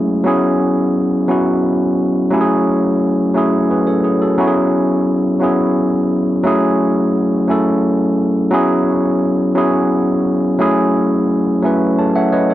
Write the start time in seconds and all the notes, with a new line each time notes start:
Already playing: F#3 G#3 A3 C#4 E4 G#4
0.24 F#3 B3 C#4 E4 G#4
1.28 F#3 B3 C#4 E4 F#4
2.31 F#3 A3 C#4 E4 G4
2.41 G#4
3.34 F#3 A3 C#4 E4 G#4
3.70 G#4 B4
3.87 A4 C#5
4.04 E4 G#4
4.22 F#4 A4
4.38 F#3 B3 C#4 E4 F#4
4.47 G#4
5.40 F#3 B3 C#4 E4 G#4
6.44 F#3 A3 C#4 E4 G#4
7.48 F#3 A3 C#4 E4 A4
8.51 F#3 B3 C#4 E4 G#4
9.55 F#3 B3 C#4 E4 G#4
10.58 F#3 A3 C#4 E4 G#4
11.62 F#3 A3 C#4 E4 B4
11.99 A4 C#5 A5
12.15 C#5 E5 F#5
12.32 B4 C#5 D#5
12.50 C#5